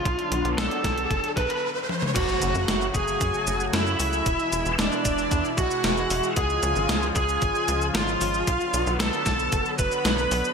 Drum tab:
CC |----------------|x---------------|----------------|----------------|
HH |xxxxxxxxxxxx----|x-x-x-x-x-x-x-o-|x-x-x-x-x-x-x-o-|x-x-x-x-x-x-x-o-|
SH |----------------|xxxxxxxxxxxxxxxx|xxxxxxxxxxxxxxxx|xxxxxxxxxxxxxxxx|
SD |----o-o---------|----o-------o---|----o-------o---|----o-------o---|
T1 |--------------o-|----------------|----------------|----------------|
T2 |---------------o|----------------|----------------|----------------|
BD |o-----o-o-o-----|o-----o-o-------|o-----o-o-o-----|o-----o-o-------|

CC |----------------|
HH |x-x-x-x-x-x-x-o-|
SH |xxxxxxxxxxxxxxxx|
SD |----o-o-----o---|
T1 |----------------|
T2 |----------------|
BD |o-----o-o-o-----|